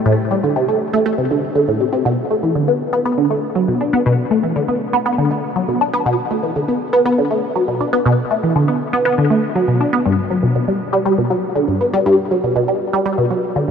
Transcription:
0.06 0.15 A2 loud
0.31 0.40 G3 medium
0.43 0.52 D3 medium
0.56 0.65 C3 medium
0.68 0.77 A3 medium
0.93 0.99 A3 loud
1.06 1.15 A3 loud
1.18 1.27 C3 medium
1.31 1.43 D3 medium
1.55 1.65 D3 medium
1.68 1.80 A2 medium
1.80 1.86 C3 medium
1.93 2.02 C3 medium
2.05 2.15 B2 loud
2.31 2.40 A3 medium
2.43 2.52 E3 medium
2.55 2.65 D3 medium
2.68 2.77 B3 medium
2.93 2.98 B3 medium
3.05 3.15 B3 medium
3.18 3.27 D3 medium
3.30 3.40 A3 medium
3.55 3.65 F#3 medium
3.68 3.80 B2 medium
3.81 3.90 D4 medium
3.93 3.99 B3 loud
4.06 4.15 B2 loud
4.31 4.40 A3 medium
4.43 4.52 E3 medium
4.56 4.65 D3 medium
4.68 4.77 B3 medium
4.93 4.99 B3 loud
5.06 5.15 B3 medium
5.18 5.27 D3 medium
5.31 5.40 A3 medium
5.56 5.65 F#3 medium
5.68 5.80 B2 medium
5.81 5.90 D4 medium
5.93 5.99 B3 loud
6.06 6.15 B2 loud
6.31 6.40 A3 medium
6.43 6.52 E3 medium
6.56 6.65 D3 medium
6.68 6.77 B3 medium
6.93 6.99 B3 loud
7.05 7.15 B3 loud
7.18 7.27 D3 medium
7.31 7.40 A3 medium
7.56 7.65 F#3 medium
7.68 7.80 B2 medium
7.81 7.90 D4 medium
7.93 7.99 B3 medium
8.06 8.15 B2 loud
8.31 8.40 A3 medium
8.43 8.52 E3 medium
8.56 8.65 D3 medium
8.68 8.77 B3 medium
8.93 8.99 B3 loud
9.05 9.15 B3 loud
9.18 9.27 D3 medium
9.30 9.40 A3 medium
9.55 9.65 F#3 medium
9.68 9.80 B2 medium
9.81 9.90 D4 medium
9.93 9.99 B3 loud
10.06 10.15 G2 loud
10.30 10.40 F#3 medium
10.43 10.52 B2 medium
10.55 10.65 B2 medium
10.68 10.77 G3 medium
10.93 10.98 G3 loud
11.06 11.15 G3 medium
11.18 11.27 B2 medium
11.30 11.40 F#3 medium
11.56 11.65 D3 medium
11.68 11.80 G2 medium
11.81 11.90 B3 medium
11.93 11.99 G3 loud
12.06 12.15 G2 loud
12.31 12.40 F#3 medium
12.44 12.52 B2 medium
12.56 12.65 B2 medium
12.68 12.77 G3 medium
12.93 12.99 G3 loud
13.05 13.15 G3 loud
13.18 13.27 B2 medium
13.30 13.40 F#3 medium
13.56 13.65 D3 medium

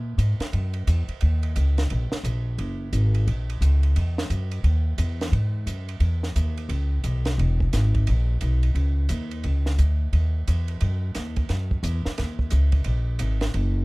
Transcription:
0.00 0.17 A#2 medium
0.18 0.38 G#2 medium
0.18 hi-hat pedal soft
0.18 ride medium
0.40 muted upright bass stroke soft
0.40 snare soft
0.40 ride soft
0.53 0.86 F#2 medium
0.53 ride soft
0.74 ride soft
0.87 1.07 E2 medium
0.87 hi-hat pedal soft
0.87 ride medium
1.08 muted upright bass stroke soft
1.08 ride soft
1.21 1.55 D#2 medium
1.21 ride medium
1.43 ride soft
1.56 1.89 C#2 medium
1.56 hi-hat pedal medium
1.56 ride medium
1.78 snare soft
1.78 ride soft
1.90 2.11 A#1 medium
1.90 ride soft
2.12 muted upright bass stroke soft
2.12 snare soft
2.24 2.57 A#1 medium
2.24 hi-hat pedal medium
2.24 ride medium
2.58 2.92 F#1 medium
2.58 ride medium
2.93 3.26 G#1 medium
2.93 hi-hat pedal soft
2.93 ride medium
3.15 ride soft
3.27 3.60 A#1 medium
3.27 ride soft
3.50 ride soft
3.61 3.94 C#2 medium
3.61 hi-hat pedal medium
3.61 ride medium
3.83 ride soft
3.96 4.29 E2 medium
3.96 ride medium
4.18 snare medium
4.30 4.63 F#2 medium
4.30 hi-hat pedal soft
4.30 ride medium
4.51 ride soft
4.64 4.97 D#2 medium
4.64 ride soft
4.98 5.31 E2 medium
4.98 hi-hat pedal medium
4.98 ride medium
5.21 snare soft
5.21 ride soft
5.32 5.66 G#2 medium
5.32 ride soft
5.66 6.00 F#2 medium
5.66 hi-hat pedal soft
5.66 ride medium
5.89 ride soft
6.00 6.34 E2 medium
6.00 ride soft
6.23 snare soft
6.36 6.68 D#2 medium
6.36 hi-hat pedal soft
6.36 ride medium
6.57 ride soft
6.69 7.03 C#2 medium
6.69 ride medium
7.04 7.37 B1 medium
7.04 hi-hat pedal soft
7.04 ride medium
7.25 snare soft
7.25 ride soft
7.38 7.72 E1 medium
7.38 ride medium
7.60 kick medium
7.73 8.06 G#1 medium
7.73 snare soft
7.73 hi-hat pedal medium
7.73 ride medium
7.95 kick soft
7.95 ride soft
8.07 8.41 A#1 medium
8.07 ride medium
8.41 8.74 B1 medium
8.41 hi-hat pedal soft
8.41 ride medium
8.63 ride soft
8.75 9.08 C#2 medium
8.75 ride soft
9.09 9.43 D#2 medium
9.09 hi-hat pedal soft
9.09 ride medium
9.31 ride soft
9.44 9.78 C#2 medium
9.44 ride medium
9.66 snare soft
9.79 10.12 D2 medium
9.79 hi-hat pedal soft
9.79 ride medium
10.13 10.46 D#2 medium
10.13 ride soft
10.48 10.81 E2 medium
10.48 hi-hat pedal medium
10.48 ride medium
10.68 ride soft
10.81 11.15 F#2 medium
10.81 ride medium
11.15 11.49 D#2 medium
11.15 snare soft
11.15 hi-hat pedal soft
11.15 ride medium
11.36 kick medium
11.36 ride soft
11.49 11.82 F#2 medium
11.49 snare soft
11.49 ride soft
11.71 kick soft
11.83 12.03 E2 medium
11.83 hi-hat pedal medium
11.83 ride medium
12.06 muted upright bass stroke soft
12.06 snare soft
12.18 12.51 D#2 medium
12.18 snare soft
12.18 ride medium
12.39 kick medium
12.51 12.85 C#2 medium
12.51 hi-hat pedal soft
12.51 ride medium
12.72 kick soft
12.72 ride soft
12.84 13.20 A#1 medium
12.84 ride medium
13.19 13.54 G#1 medium
13.19 hi-hat pedal medium
13.19 ride medium
13.41 snare medium
13.41 ride soft
13.54 13.85 F#1 medium
13.54 ride soft

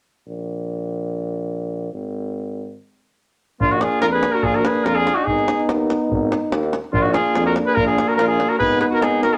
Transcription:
0.26 1.90 A#1 medium
1.93 2.75 G#1 medium
3.60 3.83 A#1 medium
3.60 5.23 A#3 medium
3.60 5.29 D4 medium
3.60 3.75 D4 medium
3.60 3.73 F4 medium
3.60 davul low medium
3.71 3.84 D#4 medium
3.71 3.83 F#4 medium
3.71 davul high soft
3.81 4.03 F4 medium
3.81 4.01 G#4 medium
3.81 davul high medium
3.92 davul high soft
4.01 4.24 F2 medium
4.01 4.08 F4 medium
4.01 4.06 A#4 medium
4.01 davul high medium
4.12 4.36 G#4 medium
4.12 4.33 B4 medium
4.23 davul high medium
4.32 4.47 F#4 medium
4.32 4.45 A#4 medium
4.43 4.66 A#1 medium
4.43 4.57 F4 medium
4.43 4.56 G#4 medium
4.43 davul low medium
4.54 4.67 F#4 medium
4.54 4.66 A#4 medium
4.54 davul high soft
4.65 4.88 G#4 medium
4.65 4.85 B4 medium
4.65 davul high medium
4.75 davul high soft
4.84 5.07 F2 medium
4.84 4.97 F4 medium
4.84 4.96 A#4 medium
4.84 davul high medium
4.95 5.19 F4 medium
4.95 5.16 G#4 medium
5.07 davul high medium
5.15 5.26 D#4 medium
5.15 5.26 F#4 medium
5.24 5.49 G#1 medium
5.24 5.68 D#4 medium
5.24 6.77 D#4 medium
5.24 5.67 G#4 medium
5.24 davul low medium
5.28 6.74 B3 medium
5.38 davul high soft
5.48 davul high medium
5.59 davul high soft
5.68 5.91 D#2 medium
5.68 davul high medium
5.90 davul high medium
6.10 6.33 G#1 medium
6.10 davul low medium
6.32 davul high medium
6.51 6.74 D#2 medium
6.51 davul high medium
6.63 davul high soft
6.73 davul high medium
6.84 davul high soft
6.92 7.16 A#1 medium
6.92 8.57 A#3 medium
6.92 8.56 D4 medium
6.92 7.05 D4 medium
6.92 7.03 F4 medium
6.92 davul low medium
7.02 7.12 D#4 medium
7.02 7.13 F#4 medium
7.02 davul high soft
7.12 7.43 F4 medium
7.12 7.43 G#4 medium
7.12 davul high medium
7.26 davul high soft
7.35 7.58 F2 medium
7.35 davul high medium
7.46 7.55 F#4 medium
7.46 7.55 A#4 medium
7.56 davul high medium
7.66 7.78 G#4 medium
7.66 7.76 B4 medium
7.75 7.99 A#1 medium
7.75 7.86 F4 medium
7.75 7.86 A#4 medium
7.75 davul low medium
7.86 8.10 F4 medium
7.86 8.09 G#4 medium
7.86 davul high soft
7.98 davul high medium
8.08 8.18 F#4 medium
8.08 8.15 A#4 medium
8.08 davul high soft
8.16 8.41 A#1 medium
8.16 8.28 F4 medium
8.16 8.27 A#4 medium
8.16 davul high medium
8.28 8.51 F4 medium
8.28 8.50 G#4 medium
8.40 davul high medium
8.49 8.58 F#4 medium
8.49 8.58 A#4 medium
8.59 8.83 G#1 medium
8.59 9.38 B3 medium
8.59 9.38 D#4 medium
8.59 8.79 G#4 medium
8.59 8.79 B4 medium
8.59 davul low medium
8.72 davul high soft
8.80 8.85 G#4 medium
8.80 8.86 B4 medium
8.80 davul high medium
8.90 9.02 F#4 medium
8.90 9.05 A#4 medium
8.90 davul high soft
9.00 9.24 G#1 medium
9.00 9.22 D#4 medium
9.00 9.22 G#4 medium
9.00 davul high medium
9.23 9.35 F#4 medium
9.23 9.35 A#4 medium
9.23 davul high medium
9.34 9.38 F4 medium
9.34 9.38 G#4 medium

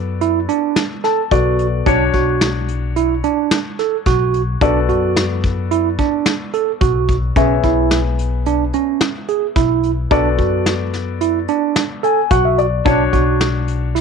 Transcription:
0.00 0.45 F#2 medium
0.00 1.27 B3 medium
0.00 1.28 F#4 medium
0.00 1.28 A4 medium
0.00 1.28 D5 medium
0.21 0.39 E4 medium
0.21 closed hi-hat medium
0.49 0.83 D4 medium
0.49 closed hi-hat medium
0.76 snare medium
0.76 closed hi-hat medium
1.04 1.21 A4 medium
1.04 1.30 A5 medium
1.04 snare soft
1.04 closed hi-hat medium
1.31 1.83 B1 loud
1.31 1.86 B3 soft
1.31 1.66 F#4 medium
1.31 1.85 F#4 soft
1.31 1.87 A4 soft
1.31 1.87 D5 medium
1.31 kick loud
1.31 closed hi-hat medium
1.59 closed hi-hat medium
1.86 2.12 B1 loud
1.86 4.57 D4 medium
1.86 2.04 D4 medium
1.86 4.57 F#4 medium
1.86 4.58 C#5 medium
1.86 kick loud
1.86 closed hi-hat medium
2.13 3.20 B1 medium
2.13 2.48 F#4 medium
2.13 kick medium
2.13 closed hi-hat medium
2.41 snare loud
2.41 closed hi-hat medium
2.68 closed hi-hat medium
2.96 3.14 E4 medium
2.96 closed hi-hat medium
3.24 3.58 D4 medium
3.24 closed hi-hat medium
3.51 snare loud
3.51 closed hi-hat medium
3.79 3.96 A4 medium
3.79 snare soft
3.79 closed hi-hat medium
4.06 4.57 B1 medium
4.06 4.41 F#4 medium
4.06 kick medium
4.06 snare soft
4.06 closed hi-hat medium
4.34 closed hi-hat medium
4.61 4.87 B1 medium
4.61 7.32 B3 medium
4.61 4.79 D4 medium
4.61 7.32 F#4 medium
4.61 7.33 A4 medium
4.61 7.33 D5 medium
4.61 kick loud
4.61 closed hi-hat medium
4.89 5.95 F#2 medium
4.89 5.23 F#4 medium
4.89 closed hi-hat soft
5.17 snare loud
5.17 closed hi-hat medium
5.44 kick medium
5.44 closed hi-hat medium
5.71 5.88 E4 medium
5.71 closed hi-hat medium
5.99 6.33 D4 medium
5.99 kick medium
5.99 closed hi-hat medium
6.26 snare loud
6.26 closed hi-hat medium
6.53 6.71 A4 medium
6.53 closed hi-hat medium
6.81 7.32 B1 medium
6.81 7.16 F#4 medium
6.81 kick loud
6.81 closed hi-hat medium
7.09 kick medium
7.09 closed hi-hat medium
7.36 7.62 B1 loud
7.36 10.07 B3 medium
7.36 7.53 C#4 medium
7.36 10.07 G#4 medium
7.36 10.07 C#5 medium
7.36 10.07 E5 medium
7.36 kick loud
7.36 closed hi-hat medium
7.63 8.70 B1 medium
7.63 7.98 E4 medium
7.63 kick medium
7.63 closed hi-hat medium
7.91 snare medium
7.91 closed hi-hat medium
8.19 closed hi-hat medium
8.46 8.64 D4 medium
8.46 closed hi-hat medium
8.73 9.08 C#4 medium
8.73 closed hi-hat medium
9.01 snare loud
9.01 closed hi-hat medium
9.28 9.46 G#4 medium
9.28 closed hi-hat medium
9.56 10.07 B1 medium
9.56 9.90 E4 medium
9.56 kick loud
9.56 snare soft
9.56 closed hi-hat medium
9.83 closed hi-hat medium
10.11 10.36 B1 medium
10.11 12.82 B3 medium
10.11 10.28 D4 medium
10.11 12.82 F#4 medium
10.11 12.82 A4 medium
10.11 12.57 D5 medium
10.11 kick loud
10.11 closed hi-hat medium
10.38 11.44 F#2 medium
10.38 10.73 F#4 medium
10.38 kick medium
10.38 closed hi-hat soft
10.66 snare loud
10.66 closed hi-hat medium
10.93 snare soft
10.93 closed hi-hat medium
11.21 11.38 E4 medium
11.21 closed hi-hat medium
11.48 11.83 D4 medium
11.48 closed hi-hat medium
11.76 snare loud
11.76 closed hi-hat medium
12.03 12.20 A4 medium
12.03 12.29 G#5 medium
12.03 closed hi-hat medium
12.31 12.82 B1 medium
12.31 12.65 F#4 medium
12.31 12.44 F#5 medium
12.31 kick loud
12.31 closed hi-hat medium
12.45 12.57 E5 medium
12.58 12.84 D5 medium
12.58 closed hi-hat medium
12.85 13.11 B1 loud
12.85 14.01 D4 medium
12.85 13.03 D4 medium
12.85 14.01 F#4 medium
12.85 14.01 C#5 medium
12.85 kick loud
12.85 closed hi-hat medium
13.13 14.01 B1 medium
13.13 13.47 F#4 medium
13.13 kick medium
13.13 closed hi-hat medium
13.41 snare loud
13.41 closed hi-hat medium
13.68 closed hi-hat medium
13.95 14.01 E4 medium
13.95 snare soft
13.95 closed hi-hat medium

